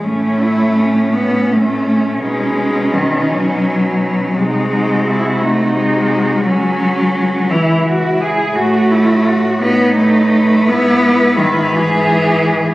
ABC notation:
X:1
M:6/8
L:1/8
Q:3/8=57
K:Alyd
V:1 name="Cello"
C6 | D6 | F6- | F3 E3 |
F3 B3- | B6 |]
V:2 name="Cello"
C E C4- | C6 | D D E D3 | C3 E F G |
F E F D3 | E3 G3 |]
V:3 name="Cello" clef=bass
A,3 B, A,2 | G,2 D, F,3 | G,3 A, G,2 | F,3 E, z2 |
A,3 B, A,2 | B,2 D, E,3 |]
V:4 name="Cello" clef=bass
A,,6 | B,,6 | ^B,,6 | C,,6 |
A,,6 | G,,6 |]